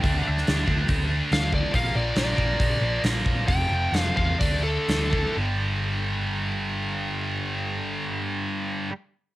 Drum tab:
HH |o---o---o---o---|o---o---o---o---|o---o---o---o---|----------------|
SD |---oo-------o---|----o-------o---|----o-------o---|----------------|
BD |o-----o-o-----o-|o-----o-o-----o-|o-----o-o-----o-|----------------|

HH |----------------|
SD |----------------|
BD |----------------|